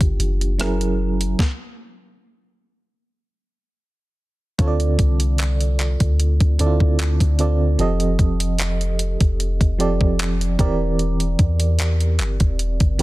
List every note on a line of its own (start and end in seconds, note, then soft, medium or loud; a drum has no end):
0.00 0.18 G1 loud
0.00 0.61 D#3 medium
0.00 0.61 A#3 medium
0.00 0.61 D4 medium
0.00 0.61 F4 medium
0.00 0.61 G4 loud
0.00 kick medium
0.00 closed hi-hat soft
0.19 1.35 F#1 loud
0.19 closed hi-hat medium
0.41 closed hi-hat soft
0.58 1.24 F#3 medium
0.58 1.24 C#4 medium
0.58 1.24 E4 medium
0.58 1.25 G#4 medium
0.58 1.25 A#4 medium
0.58 cross-stick loud
0.58 closed hi-hat medium
0.81 closed hi-hat medium
1.21 closed hi-hat medium
1.39 kick loud
1.39 snare medium
4.58 4.97 D2 loud
4.58 5.79 D3 medium
4.58 5.79 C4 medium
4.58 5.80 F4 medium
4.58 5.80 A4 medium
4.58 4.67 C#5 medium
4.58 kick loud
4.58 closed hi-hat medium
4.68 5.83 D5 medium
4.80 closed hi-hat soft
4.99 5.96 C2 medium
4.99 kick loud
4.99 closed hi-hat medium
5.20 closed hi-hat medium
5.38 clap loud
5.38 closed hi-hat medium
5.61 closed hi-hat soft
5.79 clap medium
5.79 closed hi-hat medium
6.00 6.39 D2 loud
6.00 kick medium
6.00 closed hi-hat medium
6.20 closed hi-hat medium
6.40 6.58 D2 loud
6.40 kick medium
6.40 closed hi-hat soft
6.59 6.80 D2 loud
6.59 7.20 D3 medium
6.59 7.21 C4 medium
6.59 6.66 E4 medium
6.59 7.21 A4 medium
6.59 7.22 D5 medium
6.59 closed hi-hat medium
6.66 7.24 F4 medium
6.80 7.19 D2 loud
6.80 kick medium
6.99 clap loud
6.99 closed hi-hat medium
7.20 7.77 D2 loud
7.20 kick medium
7.20 closed hi-hat medium
7.38 7.70 D3 medium
7.38 7.70 C4 medium
7.38 7.70 F4 medium
7.38 7.70 A4 medium
7.38 7.71 D5 medium
7.38 closed hi-hat medium
7.78 8.17 F1 loud
7.78 8.99 F3 medium
7.78 8.99 C4 medium
7.78 8.99 G4 medium
7.78 9.00 A4 medium
7.78 9.00 D#5 medium
7.78 closed hi-hat medium
8.00 closed hi-hat soft
8.19 9.17 F1 medium
8.19 kick loud
8.19 closed hi-hat medium
8.40 closed hi-hat medium
8.59 clap loud
8.59 closed hi-hat medium
8.81 closed hi-hat soft
8.99 closed hi-hat medium
9.21 9.59 F1 medium
9.21 kick medium
9.21 closed hi-hat medium
9.40 closed hi-hat medium
9.61 9.99 F1 loud
9.61 kick medium
9.61 closed hi-hat soft
9.78 10.40 F3 medium
9.78 10.41 C4 medium
9.78 10.41 G4 medium
9.78 10.41 A4 medium
9.78 10.42 D5 medium
9.78 closed hi-hat medium
10.01 10.57 F1 loud
10.01 kick medium
10.19 clap loud
10.19 closed hi-hat medium
10.41 closed hi-hat medium
10.58 10.66 D3 medium
10.58 11.87 C4 medium
10.58 11.88 G4 medium
10.58 11.88 A#4 medium
10.58 11.88 D5 loud
10.58 kick loud
10.58 closed hi-hat medium
10.65 11.90 E3 medium
10.99 closed hi-hat soft
11.20 closed hi-hat soft
11.39 12.20 E2 loud
11.39 kick loud
11.39 closed hi-hat medium
11.60 closed hi-hat medium
11.79 clap loud
11.79 closed hi-hat medium
12.01 closed hi-hat soft
12.19 12.39 G1 medium
12.19 clap medium
12.19 closed hi-hat medium
12.40 12.79 E1 medium
12.40 kick medium
12.40 closed hi-hat medium
12.59 closed hi-hat medium
12.80 12.98 G1 loud
12.80 kick medium
12.80 closed hi-hat soft
12.99 13.02 E1 loud
12.99 13.02 E3 medium
12.99 13.02 C4 medium
12.99 closed hi-hat medium